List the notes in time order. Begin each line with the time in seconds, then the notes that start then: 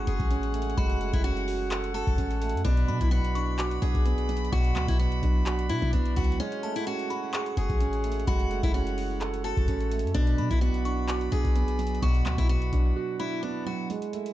Already playing: G#3 A3 C#4 F#4 G#4 C#5 F#5 C#6, downlifter
0.07 F#1 F#4 G#4, closed hi-hat
0.20 A1, kick, closed hi-hat
0.30 C#4, closed hi-hat
0.43 closed hi-hat
0.54 A3, closed hi-hat
0.62 closed hi-hat
0.70 closed hi-hat
0.77 F#1 G#3 F#4 B5, kick, closed hi-hat
0.90 closed hi-hat
1.01 A3, closed hi-hat
1.13 F#1 E4, kick, closed hi-hat
1.24 C#4 F#4, closed hi-hat
1.37 closed hi-hat
1.48 F#4, open hi-hat
1.71 A4, clap, closed hi-hat
1.84 closed hi-hat
1.94 F#4 A4 A5, closed hi-hat
2.07 F#1, kick, closed hi-hat
2.18 A1 C#4, closed hi-hat
2.31 closed hi-hat
2.42 A3, closed hi-hat
2.49 closed hi-hat
2.54 F#2, closed hi-hat
2.65 B1 B2 D4 F#4 D5 B5, kick, closed hi-hat
2.77 closed hi-hat
2.88 B2 F#3 B5, closed hi-hat
3.01 B1 E4, kick, closed hi-hat
3.11 B3 F#4, closed hi-hat
3.24 closed hi-hat
3.35 D4 C#6, closed hi-hat
3.58 F#4 D6, clap, closed hi-hat
3.71 closed hi-hat
3.82 B1 D4 G#4, closed hi-hat
3.95 B1, kick, closed hi-hat
4.06 B3, closed hi-hat
4.18 closed hi-hat
4.29 F#3, closed hi-hat
4.37 closed hi-hat
4.45 closed hi-hat
4.52 B1 B2 F#4 C#6, kick, closed hi-hat
4.64 closed hi-hat
4.76 D2 F#3, clap, closed hi-hat
4.88 B1 E4, kick, closed hi-hat
4.99 B3 F#4, closed hi-hat
5.12 closed hi-hat
5.23 B1 D4, kick, closed hi-hat
5.46 F#4, clap, closed hi-hat
5.59 closed hi-hat
5.69 B2 D4 E4 B5, closed hi-hat
5.82 B2, kick, closed hi-hat
5.93 B1 B3 D4, closed hi-hat
6.05 closed hi-hat
6.16 C#2 F#3 F#4, kick, closed hi-hat
6.24 closed hi-hat
6.32 closed hi-hat
6.40 G#3 C#4 C#5 F#5, closed hi-hat
6.52 closed hi-hat
6.63 A3 A5, closed hi-hat
6.76 E4, closed hi-hat
6.87 C#4 F#4, closed hi-hat
6.99 closed hi-hat
7.10 F#4 B5, closed hi-hat
7.33 G#4 C#6, clap, closed hi-hat
7.46 closed hi-hat
7.57 F#1 F#4 G#4, closed hi-hat
7.70 A1, kick, closed hi-hat
7.80 C#4, closed hi-hat
7.93 closed hi-hat
8.04 A3, closed hi-hat
8.12 closed hi-hat
8.20 closed hi-hat
8.27 F#1 G#3 F#4 B5, kick, closed hi-hat
8.39 closed hi-hat
8.51 A3, closed hi-hat
8.63 F#1 E4, kick, closed hi-hat
8.74 C#4 F#4, closed hi-hat
8.87 closed hi-hat
8.98 F#4, open hi-hat
9.21 A4, clap, closed hi-hat
9.34 closed hi-hat
9.44 F#4 A4 A5, closed hi-hat
9.57 F#1, kick, closed hi-hat
9.68 A1 C#4, closed hi-hat
9.80 closed hi-hat
9.91 A3, closed hi-hat
9.99 closed hi-hat
10.04 F#2, closed hi-hat
10.14 B1 B2 D4 D5 B5, kick, closed hi-hat
10.27 closed hi-hat
10.38 B2 F#3 B5, closed hi-hat
10.51 B1 E4, kick, closed hi-hat
10.61 B3 F#4, closed hi-hat
10.74 closed hi-hat
10.85 D4 C#6, closed hi-hat
11.08 F#4 D6, clap, closed hi-hat
11.21 closed hi-hat
11.32 B1 D4 G#4, closed hi-hat
11.45 B1, kick, closed hi-hat
11.55 B3, closed hi-hat
11.68 closed hi-hat
11.79 F#3, closed hi-hat
11.87 closed hi-hat
11.95 closed hi-hat
12.02 B1 B2 F#4 C#6, kick, closed hi-hat
12.15 closed hi-hat
12.26 D2 F#3, clap, closed hi-hat
12.38 B1 E4, kick, closed hi-hat
12.49 B3 F#4, closed hi-hat
12.62 closed hi-hat
12.73 B1 D4, kick, closed hi-hat
12.96 F#4
13.19 D4 E4 B5
13.43 B3 D4
13.66 F#3 F#4
13.90 G#3, closed hi-hat
14.02 closed hi-hat
14.13 A3, closed hi-hat
14.26 closed hi-hat